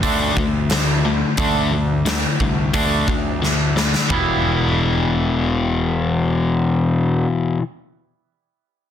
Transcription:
0.02 fingered electric bass D2, clean electric guitar D3 A3 D4, kick, open hi-hat
0.37 fingered electric bass D2, clean electric guitar D3 A3, kick
0.70 clean electric guitar D3 A3, snare, open hi-hat
1.04 clean electric guitar D3 A3
1.37 fingered electric bass D2, clean electric guitar D3 A3 D4, kick, open hi-hat
1.72 clean electric guitar D3 A3
2.06 clean electric guitar D3 A3, snare, open hi-hat
2.40 fingered electric bass C2, clean electric guitar D3 A3, kick
2.74 fingered electric bass D2, clean electric guitar D3 A3 D4, kick, open hi-hat
3.08 fingered electric bass D2, distorted electric guitar D3 A3, kick
3.42 clean electric guitar D3 A3, snare
3.76 clean electric guitar D3 A3, snare
3.95 snare
4.08 fingered electric bass E1, distorted electric guitar E2 B2, clean electric guitar E3 G3 B3, kick, floor tom
4.13 clean electric guitar E4

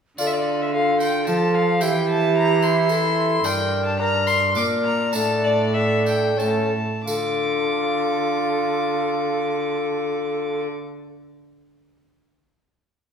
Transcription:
0.18 cello D3, bassoon F4, recorder A4, violin D5, tambourine
0.26 violin E5
0.33 violin D5
0.62 violin E5
0.73 bassoon F4, recorder A4, violin F5
1.00 violin G5, tambourine
1.27 cello F3, bassoon F4, recorder A4, violin A5, tambourine
1.54 violin F5
1.81 cello E3, bassoon E4, recorder G4, violin G5, tambourine
2.09 violin A5
2.37 violin A#5
2.62 violin C6, tambourine
2.89 recorder A4, tambourine
3.44 cello G2, bassoon D4, recorder A#4, violin G5, tambourine
3.85 violin A5
3.99 bassoon D4, recorder A#4, violin A#5
4.26 violin C6, tambourine
4.55 cello A#2, bassoon D4, recorder A#4, violin D6, tambourine
4.84 violin A#5
5.13 cello A2, bassoon D4, recorder A4, violin A5, tambourine
5.44 violin D5
5.74 bassoon D4, recorder A4, violin E5
6.06 violin G5, tambourine
6.38 cello A2, bassoon C#4, recorder A4, violin A5, tambourine
7.06 cello D3, bassoon F4, recorder A4, violin D6, tambourine

